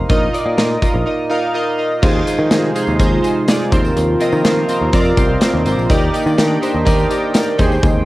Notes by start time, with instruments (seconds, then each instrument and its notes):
Already playing: synth keys D#4 G4 A#4 C5 D#5 F5 A#5 C6 D#6
0.09 picked electric bass A#1, synth keys A#2 D#4 F4 A#4 D#5, kick, closed hi-hat
0.33 synth keys D#4 F4 A#4 D5, closed hi-hat
0.46 picked electric bass A#2
0.57 picked electric bass A#2, synth keys D#4 F4 A#4 D#5, snare, closed hi-hat
0.82 synth keys D#4 F4 A#4 D#5, kick, closed hi-hat
0.94 picked electric bass A#1
1.06 synth keys D#4 F4 A#4 D#5
1.29 synth keys D#4 F4 A#4 F5
1.54 synth keys D#4 F4 A#4 D#5
1.78 synth keys D#4 F4 A#4 D#5
2.02 picked electric bass D#2, analog synth pad C3 F3 G#3 D#4 F4, synth keys D#3 D#4 F4 G#4 C5, kick, crash, tambourine
2.27 synth keys D#4 F4 G#4 C5, closed hi-hat, tambourine
2.39 picked electric bass D#3
2.51 picked electric bass D#3, synth keys D#4 F4 G#4 C5, snare, closed hi-hat, tambourine
2.75 synth keys D#4 F4 G#4 C5, closed hi-hat, tambourine
2.87 picked electric bass D#2, tambourine
2.99 picked electric bass D#2, synth keys D#4 F4 G#4 C5, kick, closed hi-hat, tambourine
3.23 synth keys D#4 F4 G#4 C5, closed hi-hat, tambourine
3.48 synth keys D#4 F4 G#4 D5, snare, closed hi-hat, tambourine
3.71 picked electric bass D#2, analog synth pad C3 A#3 A#4, synth keys D#3 C4 F4 A#4 C5, kick, closed hi-hat, tambourine
3.85 tambourine
3.96 picked electric bass D#2, closed hi-hat, tambourine
4.20 synth keys C4 F4 A#4 D#5, closed hi-hat, tambourine
4.32 picked electric bass D#3, tambourine
4.44 picked electric bass D#3, synth keys C4 F4 A#4 C5, snare, closed hi-hat, tambourine
4.69 synth keys C4 F4 A#4 C5, closed hi-hat, tambourine
4.81 picked electric bass D#2
4.93 picked electric bass F2, synth keys C4 F4 A#4 D5, kick, closed hi-hat, tambourine
5.05 tambourine
5.17 picked electric bass C2, synth keys C4 F4 A#4 C5, kick, closed hi-hat, tambourine
5.41 synth keys C4 F4 A#4 C5, snare, closed hi-hat, tambourine
5.54 picked electric bass D#2
5.65 picked electric bass G#1, synth keys C4 F4 A#4 C5, closed hi-hat, tambourine
5.78 picked electric bass A#1, tambourine
5.89 picked electric bass D#2, synth keys D#3 D#4 G4 A#4 D5, analog synth pad D#3 D4 G5, kick, closed hi-hat, tambourine
6.13 synth keys D#4 G4 A#4 D5, closed hi-hat, tambourine
6.26 picked electric bass D#3, tambourine
6.37 picked electric bass D#3, synth keys D#4 G4 A#4 D5, snare, closed hi-hat, tambourine
6.62 synth keys D#4 G4 A#4 C5, closed hi-hat, tambourine
6.74 picked electric bass D#2
6.85 picked electric bass D#2, synth keys D#4 G4 A#4 D5, kick, closed hi-hat, tambourine
6.99 tambourine
7.10 synth keys D#4 G4 A#4 D5, closed hi-hat, tambourine
7.34 synth keys D#4 G4 A#4 D5, snare, closed hi-hat, tambourine
7.58 picked electric bass D#2, synth keys D#3 D#4 G4 G#4 C5, analog synth pad G#3 C4, kick, closed hi-hat, tambourine
7.72 tambourine
7.83 picked electric bass D#2, kick, high tom, tambourine